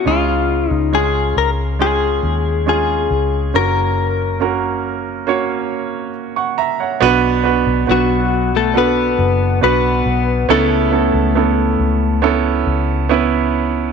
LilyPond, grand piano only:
<<
  \new Staff \with { instrumentName = "Grand piano" } { \time 4/4 \key fis \phrygian \tempo 4 = 69 << { r1 | r2. r16 <fis'' cis'''>16 <e'' ais''>16 <cis'' fis''>16~ | <cis'' fis''>16 r2. r8. | r1 | } \\ { <gis cis' eis' gis'>4 <gis cis' eis' gis'>4 <gis cis' eis' gis'>4 <gis cis' eis' gis'>4 | <ais cis' fis' ais'>4 <ais cis' fis' ais'>4 <ais cis' fis' cis''>4 r4 | <b d' fis' b'>8 <b d' fis' b'>8 <b d' fis' b'>4 <b d' fis' a'>4 <b d' fis' b'>4 | <b cis' e' a'>8 <b cis' e' a'>8 <b cis' e' a'>4 <b cis' e' a'>4 <b cis' e' b'>4 | } >> }
  \new Staff \with { instrumentName = "Grand piano" } { \clef bass \time 4/4 \key fis \phrygian cis4. r2 r8 | r1 | b,4. r2 r8 | cis4. r2 r8 | }
>>